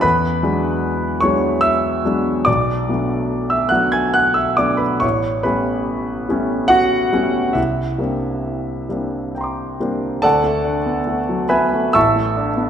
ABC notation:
X:1
M:3/4
L:1/16
Q:1/4=71
K:A
V:1 name="Grand piano"
[Bb]6 [cc']2 [ee']4 | [dd']4- [dd'] [ee'] [ff'] [gg'] [ff'] [ee'] [dd'] [Bb] | [cc']2 [Bb]6 [Ff]4 | [Ee]8 [=g_b=c'd']4 |
[Adfa]6 [Begb]2 [eac'e']4 |]
V:2 name="Grand piano"
E,,2 [F,G,B,D]4 [F,G,B,D]4 [F,G,B,D]2 | B,,,2 [F,A,B,D]4 [F,A,B,D]4 [F,A,B,D]2 | A,,,2 [=G,A,B,C]4 [G,A,B,C]4 [G,A,B,C]2 | =C,,2 [=G,_B,=CD]4 [G,B,CD]4 [G,B,CD]2 |
D,, A, D B, A, F, B, A, A,,, A, D B, |]